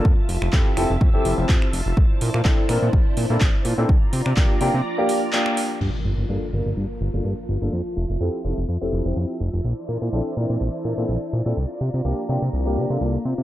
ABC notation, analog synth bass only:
X:1
M:4/4
L:1/16
Q:"Swing 16ths" 1/4=125
K:Cmix
V:1 name="Analog synth bass" clef=bass
F,, z F,,, F,,, F,, z F,,, F,,, F,, F,,, F,,, F,,, F,, z F,,, F,,, | B,,, z B,, B,, B,,, z B,, B,, B,,, z B,, B,, B,,, z B,, B,, | C,, z C, C, C,, z C, C, z8 | G,, z G,,, G,,, G,, z G,,, G,,, G,, z G,,, G,,, G,, z G,,, G,,, |
F,, z F,,, F,,, F,, z F,,, F,,, F,, F,,, F,,, F,,, F,, z F,,, F,,, | B,,, z B,, B,, B,,, z B,, B,, B,,, z B,, B,, B,,, z B,, B,, | C,, z C, C, C,, z C, C, C,,2 C, C, C,, z C, C, |]